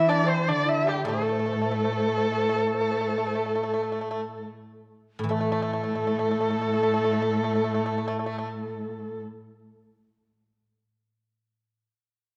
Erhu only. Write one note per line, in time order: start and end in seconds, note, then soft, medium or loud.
0.00 0.10 E5 medium
0.09 0.30 D5 medium
0.29 0.49 C5 medium
0.48 0.70 D5 medium
0.68 0.90 E5 loud
0.88 1.06 G4 medium
1.07 1.25 G#4 medium
1.25 4.44 A4 medium
5.31 9.21 A4 medium